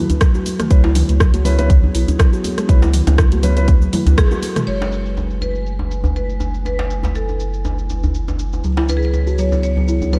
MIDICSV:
0, 0, Header, 1, 8, 480
1, 0, Start_track
1, 0, Key_signature, 3, "minor"
1, 0, Tempo, 495868
1, 684, Time_signature, 4, 2, 24, 8
1, 9864, End_track
2, 0, Start_track
2, 0, Title_t, "Marimba"
2, 0, Program_c, 0, 12
2, 4045, Note_on_c, 0, 68, 90
2, 4521, Note_on_c, 0, 73, 94
2, 4539, Note_off_c, 0, 68, 0
2, 5204, Note_off_c, 0, 73, 0
2, 5246, Note_on_c, 0, 71, 86
2, 5927, Note_off_c, 0, 71, 0
2, 5965, Note_on_c, 0, 71, 82
2, 6436, Note_off_c, 0, 71, 0
2, 6448, Note_on_c, 0, 71, 88
2, 6926, Note_on_c, 0, 69, 72
2, 6941, Note_off_c, 0, 71, 0
2, 8087, Note_off_c, 0, 69, 0
2, 8612, Note_on_c, 0, 71, 91
2, 8677, Note_off_c, 0, 71, 0
2, 8682, Note_on_c, 0, 68, 77
2, 8752, Note_off_c, 0, 68, 0
2, 8759, Note_on_c, 0, 71, 93
2, 9066, Note_off_c, 0, 71, 0
2, 9091, Note_on_c, 0, 73, 94
2, 9311, Note_off_c, 0, 73, 0
2, 9326, Note_on_c, 0, 73, 100
2, 9809, Note_on_c, 0, 71, 86
2, 9820, Note_off_c, 0, 73, 0
2, 9864, Note_off_c, 0, 71, 0
2, 9864, End_track
3, 0, Start_track
3, 0, Title_t, "Analog synth pad"
3, 0, Program_c, 1, 89
3, 0, Note_on_c, 1, 57, 78
3, 0, Note_on_c, 1, 64, 73
3, 0, Note_on_c, 1, 66, 73
3, 0, Note_on_c, 1, 71, 90
3, 642, Note_off_c, 1, 57, 0
3, 642, Note_off_c, 1, 71, 0
3, 645, Note_off_c, 1, 64, 0
3, 665, Note_off_c, 1, 66, 0
3, 683, Note_on_c, 1, 59, 81
3, 683, Note_on_c, 1, 64, 74
3, 683, Note_on_c, 1, 68, 75
3, 686, Note_on_c, 1, 73, 90
3, 2586, Note_off_c, 1, 73, 0
3, 2605, Note_on_c, 1, 71, 94
3, 4485, Note_off_c, 1, 68, 0
3, 4486, Note_off_c, 1, 59, 0
3, 4486, Note_off_c, 1, 64, 0
3, 4506, Note_off_c, 1, 71, 0
3, 4520, Note_on_c, 1, 71, 86
3, 4521, Note_on_c, 1, 64, 71
3, 4522, Note_on_c, 1, 80, 71
3, 4523, Note_on_c, 1, 57, 76
3, 8324, Note_off_c, 1, 71, 0
3, 8325, Note_off_c, 1, 80, 0
3, 8326, Note_off_c, 1, 57, 0
3, 8359, Note_on_c, 1, 59, 80
3, 8360, Note_on_c, 1, 73, 86
3, 8361, Note_on_c, 1, 68, 70
3, 9864, Note_off_c, 1, 59, 0
3, 9864, Note_off_c, 1, 64, 0
3, 9864, Note_off_c, 1, 68, 0
3, 9864, Note_off_c, 1, 73, 0
3, 9864, End_track
4, 0, Start_track
4, 0, Title_t, "Felt piano"
4, 0, Program_c, 2, 0
4, 683, Note_on_c, 2, 61, 84
4, 684, Note_on_c, 2, 64, 77
4, 684, Note_on_c, 2, 71, 92
4, 771, Note_off_c, 2, 61, 0
4, 771, Note_off_c, 2, 64, 0
4, 771, Note_off_c, 2, 71, 0
4, 1401, Note_on_c, 2, 61, 84
4, 1401, Note_on_c, 2, 64, 75
4, 1403, Note_on_c, 2, 71, 94
4, 1490, Note_off_c, 2, 61, 0
4, 1490, Note_off_c, 2, 64, 0
4, 1491, Note_off_c, 2, 71, 0
4, 1532, Note_on_c, 2, 61, 96
4, 1532, Note_on_c, 2, 71, 110
4, 1533, Note_on_c, 2, 64, 92
4, 1651, Note_off_c, 2, 61, 0
4, 1651, Note_off_c, 2, 64, 0
4, 1651, Note_off_c, 2, 71, 0
4, 2603, Note_on_c, 2, 61, 85
4, 2603, Note_on_c, 2, 64, 78
4, 2603, Note_on_c, 2, 71, 94
4, 2691, Note_off_c, 2, 61, 0
4, 2691, Note_off_c, 2, 64, 0
4, 2691, Note_off_c, 2, 71, 0
4, 3323, Note_on_c, 2, 61, 83
4, 3323, Note_on_c, 2, 64, 75
4, 3323, Note_on_c, 2, 71, 94
4, 3411, Note_off_c, 2, 61, 0
4, 3411, Note_off_c, 2, 64, 0
4, 3411, Note_off_c, 2, 71, 0
4, 3453, Note_on_c, 2, 71, 107
4, 3454, Note_on_c, 2, 61, 96
4, 3454, Note_on_c, 2, 64, 86
4, 3571, Note_off_c, 2, 61, 0
4, 3571, Note_off_c, 2, 64, 0
4, 3571, Note_off_c, 2, 71, 0
4, 9864, End_track
5, 0, Start_track
5, 0, Title_t, "Kalimba"
5, 0, Program_c, 3, 108
5, 204, Note_on_c, 3, 54, 103
5, 275, Note_off_c, 3, 54, 0
5, 336, Note_on_c, 3, 66, 97
5, 434, Note_off_c, 3, 66, 0
5, 577, Note_on_c, 3, 57, 96
5, 674, Note_off_c, 3, 57, 0
5, 686, Note_on_c, 3, 54, 79
5, 756, Note_off_c, 3, 54, 0
5, 817, Note_on_c, 3, 64, 101
5, 914, Note_off_c, 3, 64, 0
5, 1298, Note_on_c, 3, 66, 99
5, 1395, Note_off_c, 3, 66, 0
5, 1405, Note_on_c, 3, 54, 94
5, 1523, Note_off_c, 3, 54, 0
5, 1776, Note_on_c, 3, 54, 76
5, 1874, Note_off_c, 3, 54, 0
5, 1885, Note_on_c, 3, 64, 75
5, 2010, Note_off_c, 3, 64, 0
5, 2124, Note_on_c, 3, 54, 101
5, 2195, Note_off_c, 3, 54, 0
5, 2257, Note_on_c, 3, 66, 100
5, 2354, Note_off_c, 3, 66, 0
5, 2496, Note_on_c, 3, 56, 98
5, 2594, Note_off_c, 3, 56, 0
5, 2607, Note_on_c, 3, 54, 79
5, 2677, Note_off_c, 3, 54, 0
5, 2738, Note_on_c, 3, 64, 99
5, 2835, Note_off_c, 3, 64, 0
5, 3216, Note_on_c, 3, 66, 99
5, 3314, Note_off_c, 3, 66, 0
5, 3325, Note_on_c, 3, 54, 96
5, 3443, Note_off_c, 3, 54, 0
5, 3694, Note_on_c, 3, 54, 75
5, 3793, Note_off_c, 3, 54, 0
5, 3805, Note_on_c, 3, 64, 74
5, 3929, Note_off_c, 3, 64, 0
5, 4047, Note_on_c, 3, 54, 101
5, 4117, Note_off_c, 3, 54, 0
5, 4179, Note_on_c, 3, 66, 96
5, 4276, Note_off_c, 3, 66, 0
5, 4419, Note_on_c, 3, 56, 103
5, 4516, Note_off_c, 3, 56, 0
5, 8366, Note_on_c, 3, 54, 72
5, 8436, Note_off_c, 3, 54, 0
5, 8497, Note_on_c, 3, 64, 89
5, 8594, Note_off_c, 3, 64, 0
5, 8976, Note_on_c, 3, 66, 88
5, 9074, Note_off_c, 3, 66, 0
5, 9086, Note_on_c, 3, 54, 88
5, 9204, Note_off_c, 3, 54, 0
5, 9458, Note_on_c, 3, 54, 68
5, 9555, Note_off_c, 3, 54, 0
5, 9567, Note_on_c, 3, 64, 70
5, 9690, Note_off_c, 3, 64, 0
5, 9806, Note_on_c, 3, 54, 90
5, 9864, Note_off_c, 3, 54, 0
5, 9864, End_track
6, 0, Start_track
6, 0, Title_t, "Sub bass"
6, 0, Program_c, 4, 38
6, 683, Note_on_c, 4, 37, 98
6, 1000, Note_off_c, 4, 37, 0
6, 1055, Note_on_c, 4, 37, 93
6, 1838, Note_off_c, 4, 37, 0
6, 1885, Note_on_c, 4, 35, 82
6, 1981, Note_off_c, 4, 35, 0
6, 2605, Note_on_c, 4, 37, 98
6, 2920, Note_off_c, 4, 37, 0
6, 2972, Note_on_c, 4, 37, 96
6, 3757, Note_off_c, 4, 37, 0
6, 3932, Note_on_c, 4, 37, 100
6, 4014, Note_off_c, 4, 37, 0
6, 4046, Note_on_c, 4, 32, 84
6, 4142, Note_off_c, 4, 32, 0
6, 4524, Note_on_c, 4, 30, 82
6, 8343, Note_off_c, 4, 30, 0
6, 8368, Note_on_c, 4, 37, 85
6, 9864, Note_off_c, 4, 37, 0
6, 9864, End_track
7, 0, Start_track
7, 0, Title_t, "Djembe"
7, 96, Note_on_c, 9, 64, 84
7, 193, Note_off_c, 9, 64, 0
7, 341, Note_on_c, 9, 63, 83
7, 438, Note_off_c, 9, 63, 0
7, 579, Note_on_c, 9, 63, 56
7, 676, Note_off_c, 9, 63, 0
7, 811, Note_on_c, 9, 62, 93
7, 908, Note_off_c, 9, 62, 0
7, 923, Note_on_c, 9, 63, 87
7, 1019, Note_off_c, 9, 63, 0
7, 1163, Note_on_c, 9, 63, 62
7, 1259, Note_off_c, 9, 63, 0
7, 1536, Note_on_c, 9, 63, 80
7, 1632, Note_off_c, 9, 63, 0
7, 1778, Note_on_c, 9, 63, 61
7, 1875, Note_off_c, 9, 63, 0
7, 2015, Note_on_c, 9, 64, 87
7, 2111, Note_off_c, 9, 64, 0
7, 2117, Note_on_c, 9, 63, 75
7, 2214, Note_off_c, 9, 63, 0
7, 2362, Note_on_c, 9, 63, 64
7, 2459, Note_off_c, 9, 63, 0
7, 2733, Note_on_c, 9, 62, 93
7, 2734, Note_on_c, 9, 63, 85
7, 2830, Note_off_c, 9, 62, 0
7, 2831, Note_off_c, 9, 63, 0
7, 2973, Note_on_c, 9, 62, 78
7, 2973, Note_on_c, 9, 63, 60
7, 2976, Note_on_c, 9, 64, 98
7, 3069, Note_off_c, 9, 62, 0
7, 3069, Note_off_c, 9, 63, 0
7, 3073, Note_off_c, 9, 64, 0
7, 3321, Note_on_c, 9, 63, 79
7, 3418, Note_off_c, 9, 63, 0
7, 3559, Note_on_c, 9, 63, 58
7, 3656, Note_off_c, 9, 63, 0
7, 3934, Note_on_c, 9, 63, 90
7, 3934, Note_on_c, 9, 64, 94
7, 4031, Note_off_c, 9, 63, 0
7, 4031, Note_off_c, 9, 64, 0
7, 4175, Note_on_c, 9, 63, 63
7, 4272, Note_off_c, 9, 63, 0
7, 4656, Note_on_c, 9, 63, 61
7, 4663, Note_on_c, 9, 62, 94
7, 4752, Note_off_c, 9, 63, 0
7, 4760, Note_off_c, 9, 62, 0
7, 5009, Note_on_c, 9, 63, 81
7, 5106, Note_off_c, 9, 63, 0
7, 5239, Note_on_c, 9, 63, 60
7, 5336, Note_off_c, 9, 63, 0
7, 5608, Note_on_c, 9, 63, 82
7, 5704, Note_off_c, 9, 63, 0
7, 5844, Note_on_c, 9, 64, 83
7, 5845, Note_on_c, 9, 63, 58
7, 5941, Note_off_c, 9, 64, 0
7, 5942, Note_off_c, 9, 63, 0
7, 6196, Note_on_c, 9, 63, 86
7, 6292, Note_off_c, 9, 63, 0
7, 6440, Note_on_c, 9, 63, 63
7, 6537, Note_off_c, 9, 63, 0
7, 6573, Note_on_c, 9, 62, 88
7, 6670, Note_off_c, 9, 62, 0
7, 6805, Note_on_c, 9, 64, 73
7, 6810, Note_on_c, 9, 63, 80
7, 6820, Note_on_c, 9, 62, 73
7, 6902, Note_off_c, 9, 64, 0
7, 6907, Note_off_c, 9, 63, 0
7, 6917, Note_off_c, 9, 62, 0
7, 7057, Note_on_c, 9, 63, 54
7, 7154, Note_off_c, 9, 63, 0
7, 7405, Note_on_c, 9, 63, 89
7, 7501, Note_off_c, 9, 63, 0
7, 7649, Note_on_c, 9, 63, 57
7, 7745, Note_off_c, 9, 63, 0
7, 7780, Note_on_c, 9, 64, 86
7, 7876, Note_off_c, 9, 64, 0
7, 8018, Note_on_c, 9, 63, 90
7, 8115, Note_off_c, 9, 63, 0
7, 8262, Note_on_c, 9, 63, 62
7, 8359, Note_off_c, 9, 63, 0
7, 8491, Note_on_c, 9, 62, 88
7, 8588, Note_off_c, 9, 62, 0
7, 8609, Note_on_c, 9, 63, 82
7, 8706, Note_off_c, 9, 63, 0
7, 8844, Note_on_c, 9, 63, 63
7, 8940, Note_off_c, 9, 63, 0
7, 9216, Note_on_c, 9, 63, 84
7, 9312, Note_off_c, 9, 63, 0
7, 9454, Note_on_c, 9, 63, 62
7, 9551, Note_off_c, 9, 63, 0
7, 9697, Note_on_c, 9, 64, 74
7, 9794, Note_off_c, 9, 64, 0
7, 9806, Note_on_c, 9, 63, 92
7, 9864, Note_off_c, 9, 63, 0
7, 9864, End_track
8, 0, Start_track
8, 0, Title_t, "Drums"
8, 93, Note_on_c, 9, 42, 46
8, 94, Note_on_c, 9, 82, 37
8, 102, Note_on_c, 9, 62, 39
8, 190, Note_off_c, 9, 42, 0
8, 191, Note_off_c, 9, 82, 0
8, 199, Note_off_c, 9, 62, 0
8, 201, Note_on_c, 9, 37, 97
8, 201, Note_on_c, 9, 42, 56
8, 202, Note_on_c, 9, 82, 50
8, 204, Note_on_c, 9, 36, 109
8, 298, Note_off_c, 9, 37, 0
8, 298, Note_off_c, 9, 42, 0
8, 298, Note_off_c, 9, 82, 0
8, 301, Note_off_c, 9, 36, 0
8, 335, Note_on_c, 9, 82, 34
8, 431, Note_off_c, 9, 82, 0
8, 443, Note_on_c, 9, 62, 52
8, 444, Note_on_c, 9, 63, 60
8, 445, Note_on_c, 9, 46, 75
8, 445, Note_on_c, 9, 82, 84
8, 540, Note_off_c, 9, 62, 0
8, 541, Note_off_c, 9, 46, 0
8, 541, Note_off_c, 9, 63, 0
8, 542, Note_off_c, 9, 82, 0
8, 577, Note_on_c, 9, 37, 57
8, 577, Note_on_c, 9, 42, 44
8, 577, Note_on_c, 9, 47, 81
8, 577, Note_on_c, 9, 82, 37
8, 674, Note_off_c, 9, 37, 0
8, 674, Note_off_c, 9, 42, 0
8, 674, Note_off_c, 9, 47, 0
8, 674, Note_off_c, 9, 82, 0
8, 683, Note_on_c, 9, 42, 56
8, 684, Note_on_c, 9, 36, 110
8, 684, Note_on_c, 9, 82, 49
8, 780, Note_off_c, 9, 42, 0
8, 780, Note_off_c, 9, 82, 0
8, 781, Note_off_c, 9, 36, 0
8, 820, Note_on_c, 9, 62, 51
8, 917, Note_off_c, 9, 62, 0
8, 922, Note_on_c, 9, 46, 89
8, 922, Note_on_c, 9, 47, 78
8, 923, Note_on_c, 9, 82, 86
8, 1019, Note_off_c, 9, 46, 0
8, 1019, Note_off_c, 9, 47, 0
8, 1019, Note_off_c, 9, 82, 0
8, 1056, Note_on_c, 9, 42, 44
8, 1056, Note_on_c, 9, 82, 36
8, 1064, Note_on_c, 9, 63, 59
8, 1153, Note_off_c, 9, 42, 0
8, 1153, Note_off_c, 9, 82, 0
8, 1161, Note_off_c, 9, 63, 0
8, 1163, Note_on_c, 9, 62, 40
8, 1164, Note_on_c, 9, 36, 108
8, 1165, Note_on_c, 9, 37, 96
8, 1165, Note_on_c, 9, 82, 46
8, 1168, Note_on_c, 9, 64, 92
8, 1260, Note_off_c, 9, 62, 0
8, 1261, Note_off_c, 9, 36, 0
8, 1262, Note_off_c, 9, 37, 0
8, 1262, Note_off_c, 9, 82, 0
8, 1265, Note_off_c, 9, 64, 0
8, 1295, Note_on_c, 9, 42, 58
8, 1295, Note_on_c, 9, 82, 33
8, 1297, Note_on_c, 9, 63, 80
8, 1392, Note_off_c, 9, 42, 0
8, 1392, Note_off_c, 9, 82, 0
8, 1394, Note_off_c, 9, 63, 0
8, 1403, Note_on_c, 9, 64, 76
8, 1406, Note_on_c, 9, 46, 78
8, 1406, Note_on_c, 9, 82, 85
8, 1410, Note_on_c, 9, 63, 59
8, 1500, Note_off_c, 9, 64, 0
8, 1502, Note_off_c, 9, 46, 0
8, 1503, Note_off_c, 9, 82, 0
8, 1507, Note_off_c, 9, 63, 0
8, 1536, Note_on_c, 9, 42, 41
8, 1536, Note_on_c, 9, 82, 34
8, 1543, Note_on_c, 9, 62, 50
8, 1633, Note_off_c, 9, 42, 0
8, 1633, Note_off_c, 9, 82, 0
8, 1640, Note_off_c, 9, 62, 0
8, 1644, Note_on_c, 9, 36, 112
8, 1645, Note_on_c, 9, 42, 56
8, 1645, Note_on_c, 9, 47, 78
8, 1645, Note_on_c, 9, 82, 48
8, 1741, Note_off_c, 9, 36, 0
8, 1742, Note_off_c, 9, 42, 0
8, 1742, Note_off_c, 9, 47, 0
8, 1742, Note_off_c, 9, 82, 0
8, 1778, Note_on_c, 9, 64, 80
8, 1875, Note_off_c, 9, 64, 0
8, 1885, Note_on_c, 9, 46, 88
8, 1885, Note_on_c, 9, 82, 80
8, 1981, Note_off_c, 9, 46, 0
8, 1982, Note_off_c, 9, 82, 0
8, 2017, Note_on_c, 9, 42, 46
8, 2017, Note_on_c, 9, 82, 36
8, 2020, Note_on_c, 9, 62, 35
8, 2114, Note_off_c, 9, 42, 0
8, 2114, Note_off_c, 9, 82, 0
8, 2117, Note_off_c, 9, 62, 0
8, 2123, Note_on_c, 9, 36, 108
8, 2125, Note_on_c, 9, 37, 101
8, 2125, Note_on_c, 9, 42, 58
8, 2126, Note_on_c, 9, 82, 49
8, 2220, Note_off_c, 9, 36, 0
8, 2222, Note_off_c, 9, 37, 0
8, 2222, Note_off_c, 9, 42, 0
8, 2223, Note_off_c, 9, 82, 0
8, 2257, Note_on_c, 9, 82, 35
8, 2354, Note_off_c, 9, 82, 0
8, 2366, Note_on_c, 9, 46, 79
8, 2366, Note_on_c, 9, 82, 83
8, 2369, Note_on_c, 9, 62, 50
8, 2371, Note_on_c, 9, 63, 64
8, 2462, Note_off_c, 9, 46, 0
8, 2463, Note_off_c, 9, 82, 0
8, 2466, Note_off_c, 9, 62, 0
8, 2468, Note_off_c, 9, 63, 0
8, 2496, Note_on_c, 9, 37, 59
8, 2496, Note_on_c, 9, 42, 47
8, 2496, Note_on_c, 9, 82, 37
8, 2593, Note_off_c, 9, 37, 0
8, 2593, Note_off_c, 9, 42, 0
8, 2593, Note_off_c, 9, 82, 0
8, 2603, Note_on_c, 9, 36, 114
8, 2604, Note_on_c, 9, 42, 55
8, 2605, Note_on_c, 9, 82, 49
8, 2700, Note_off_c, 9, 36, 0
8, 2701, Note_off_c, 9, 42, 0
8, 2701, Note_off_c, 9, 82, 0
8, 2735, Note_on_c, 9, 82, 34
8, 2742, Note_on_c, 9, 62, 51
8, 2832, Note_off_c, 9, 82, 0
8, 2839, Note_off_c, 9, 62, 0
8, 2841, Note_on_c, 9, 46, 89
8, 2841, Note_on_c, 9, 47, 73
8, 2842, Note_on_c, 9, 82, 86
8, 2938, Note_off_c, 9, 46, 0
8, 2938, Note_off_c, 9, 47, 0
8, 2938, Note_off_c, 9, 82, 0
8, 2973, Note_on_c, 9, 42, 45
8, 2974, Note_on_c, 9, 82, 37
8, 2980, Note_on_c, 9, 63, 67
8, 3070, Note_off_c, 9, 42, 0
8, 3071, Note_off_c, 9, 82, 0
8, 3076, Note_off_c, 9, 63, 0
8, 3081, Note_on_c, 9, 37, 104
8, 3081, Note_on_c, 9, 82, 48
8, 3083, Note_on_c, 9, 36, 109
8, 3087, Note_on_c, 9, 62, 44
8, 3095, Note_on_c, 9, 64, 87
8, 3178, Note_off_c, 9, 37, 0
8, 3178, Note_off_c, 9, 82, 0
8, 3180, Note_off_c, 9, 36, 0
8, 3184, Note_off_c, 9, 62, 0
8, 3192, Note_off_c, 9, 64, 0
8, 3213, Note_on_c, 9, 42, 59
8, 3213, Note_on_c, 9, 82, 35
8, 3225, Note_on_c, 9, 63, 90
8, 3309, Note_off_c, 9, 42, 0
8, 3310, Note_off_c, 9, 82, 0
8, 3321, Note_on_c, 9, 46, 80
8, 3322, Note_off_c, 9, 63, 0
8, 3322, Note_on_c, 9, 82, 87
8, 3327, Note_on_c, 9, 64, 90
8, 3328, Note_on_c, 9, 63, 55
8, 3418, Note_off_c, 9, 46, 0
8, 3419, Note_off_c, 9, 82, 0
8, 3424, Note_off_c, 9, 64, 0
8, 3425, Note_off_c, 9, 63, 0
8, 3453, Note_on_c, 9, 42, 42
8, 3453, Note_on_c, 9, 82, 35
8, 3458, Note_on_c, 9, 62, 57
8, 3550, Note_off_c, 9, 42, 0
8, 3550, Note_off_c, 9, 82, 0
8, 3554, Note_off_c, 9, 62, 0
8, 3561, Note_on_c, 9, 42, 54
8, 3562, Note_on_c, 9, 82, 49
8, 3563, Note_on_c, 9, 36, 112
8, 3573, Note_on_c, 9, 63, 96
8, 3658, Note_off_c, 9, 42, 0
8, 3658, Note_off_c, 9, 82, 0
8, 3660, Note_off_c, 9, 36, 0
8, 3669, Note_off_c, 9, 63, 0
8, 3695, Note_on_c, 9, 82, 36
8, 3792, Note_off_c, 9, 82, 0
8, 3804, Note_on_c, 9, 46, 90
8, 3804, Note_on_c, 9, 47, 84
8, 3804, Note_on_c, 9, 82, 83
8, 3809, Note_on_c, 9, 63, 92
8, 3810, Note_on_c, 9, 64, 99
8, 3901, Note_off_c, 9, 46, 0
8, 3901, Note_off_c, 9, 47, 0
8, 3901, Note_off_c, 9, 82, 0
8, 3906, Note_off_c, 9, 63, 0
8, 3907, Note_off_c, 9, 64, 0
8, 3936, Note_on_c, 9, 42, 46
8, 3936, Note_on_c, 9, 82, 36
8, 3942, Note_on_c, 9, 62, 40
8, 4032, Note_off_c, 9, 42, 0
8, 4033, Note_off_c, 9, 82, 0
8, 4039, Note_off_c, 9, 62, 0
8, 4044, Note_on_c, 9, 36, 109
8, 4044, Note_on_c, 9, 37, 102
8, 4044, Note_on_c, 9, 42, 58
8, 4044, Note_on_c, 9, 48, 60
8, 4044, Note_on_c, 9, 82, 50
8, 4141, Note_off_c, 9, 36, 0
8, 4141, Note_off_c, 9, 37, 0
8, 4141, Note_off_c, 9, 42, 0
8, 4141, Note_off_c, 9, 48, 0
8, 4141, Note_off_c, 9, 82, 0
8, 4174, Note_on_c, 9, 48, 62
8, 4174, Note_on_c, 9, 82, 35
8, 4270, Note_off_c, 9, 48, 0
8, 4271, Note_off_c, 9, 82, 0
8, 4283, Note_on_c, 9, 63, 60
8, 4284, Note_on_c, 9, 46, 81
8, 4285, Note_on_c, 9, 82, 88
8, 4290, Note_on_c, 9, 62, 56
8, 4380, Note_off_c, 9, 63, 0
8, 4381, Note_off_c, 9, 46, 0
8, 4381, Note_off_c, 9, 82, 0
8, 4386, Note_off_c, 9, 62, 0
8, 4417, Note_on_c, 9, 37, 62
8, 4417, Note_on_c, 9, 42, 46
8, 4417, Note_on_c, 9, 45, 82
8, 4417, Note_on_c, 9, 47, 76
8, 4417, Note_on_c, 9, 82, 38
8, 4513, Note_off_c, 9, 37, 0
8, 4513, Note_off_c, 9, 42, 0
8, 4513, Note_off_c, 9, 45, 0
8, 4513, Note_off_c, 9, 47, 0
8, 4514, Note_off_c, 9, 82, 0
8, 4523, Note_on_c, 9, 49, 74
8, 4524, Note_on_c, 9, 82, 44
8, 4620, Note_off_c, 9, 49, 0
8, 4620, Note_off_c, 9, 82, 0
8, 4763, Note_on_c, 9, 82, 80
8, 4860, Note_off_c, 9, 82, 0
8, 4894, Note_on_c, 9, 82, 35
8, 4991, Note_off_c, 9, 82, 0
8, 5003, Note_on_c, 9, 82, 46
8, 5100, Note_off_c, 9, 82, 0
8, 5133, Note_on_c, 9, 82, 31
8, 5230, Note_off_c, 9, 82, 0
8, 5242, Note_on_c, 9, 82, 80
8, 5339, Note_off_c, 9, 82, 0
8, 5373, Note_on_c, 9, 82, 32
8, 5470, Note_off_c, 9, 82, 0
8, 5481, Note_on_c, 9, 82, 45
8, 5577, Note_off_c, 9, 82, 0
8, 5723, Note_on_c, 9, 82, 76
8, 5819, Note_off_c, 9, 82, 0
8, 5853, Note_on_c, 9, 82, 34
8, 5950, Note_off_c, 9, 82, 0
8, 5963, Note_on_c, 9, 82, 47
8, 6059, Note_off_c, 9, 82, 0
8, 6092, Note_on_c, 9, 82, 33
8, 6189, Note_off_c, 9, 82, 0
8, 6198, Note_on_c, 9, 82, 81
8, 6295, Note_off_c, 9, 82, 0
8, 6332, Note_on_c, 9, 82, 35
8, 6428, Note_off_c, 9, 82, 0
8, 6443, Note_on_c, 9, 82, 47
8, 6540, Note_off_c, 9, 82, 0
8, 6682, Note_on_c, 9, 82, 85
8, 6779, Note_off_c, 9, 82, 0
8, 6814, Note_on_c, 9, 82, 36
8, 6910, Note_off_c, 9, 82, 0
8, 6921, Note_on_c, 9, 82, 46
8, 7018, Note_off_c, 9, 82, 0
8, 7053, Note_on_c, 9, 82, 34
8, 7150, Note_off_c, 9, 82, 0
8, 7161, Note_on_c, 9, 82, 85
8, 7258, Note_off_c, 9, 82, 0
8, 7294, Note_on_c, 9, 82, 33
8, 7391, Note_off_c, 9, 82, 0
8, 7402, Note_on_c, 9, 82, 48
8, 7498, Note_off_c, 9, 82, 0
8, 7535, Note_on_c, 9, 82, 35
8, 7632, Note_off_c, 9, 82, 0
8, 7643, Note_on_c, 9, 82, 82
8, 7739, Note_off_c, 9, 82, 0
8, 7775, Note_on_c, 9, 82, 36
8, 7872, Note_off_c, 9, 82, 0
8, 7884, Note_on_c, 9, 82, 50
8, 7980, Note_off_c, 9, 82, 0
8, 8015, Note_on_c, 9, 82, 35
8, 8111, Note_off_c, 9, 82, 0
8, 8122, Note_on_c, 9, 82, 83
8, 8219, Note_off_c, 9, 82, 0
8, 8254, Note_on_c, 9, 82, 37
8, 8351, Note_off_c, 9, 82, 0
8, 8362, Note_on_c, 9, 82, 49
8, 8459, Note_off_c, 9, 82, 0
8, 8601, Note_on_c, 9, 82, 86
8, 8698, Note_off_c, 9, 82, 0
8, 8735, Note_on_c, 9, 82, 37
8, 8831, Note_off_c, 9, 82, 0
8, 8842, Note_on_c, 9, 82, 48
8, 8939, Note_off_c, 9, 82, 0
8, 8974, Note_on_c, 9, 82, 35
8, 9071, Note_off_c, 9, 82, 0
8, 9082, Note_on_c, 9, 82, 85
8, 9179, Note_off_c, 9, 82, 0
8, 9216, Note_on_c, 9, 82, 34
8, 9313, Note_off_c, 9, 82, 0
8, 9325, Note_on_c, 9, 82, 48
8, 9422, Note_off_c, 9, 82, 0
8, 9565, Note_on_c, 9, 82, 83
8, 9662, Note_off_c, 9, 82, 0
8, 9696, Note_on_c, 9, 82, 37
8, 9792, Note_off_c, 9, 82, 0
8, 9805, Note_on_c, 9, 82, 50
8, 9864, Note_off_c, 9, 82, 0
8, 9864, End_track
0, 0, End_of_file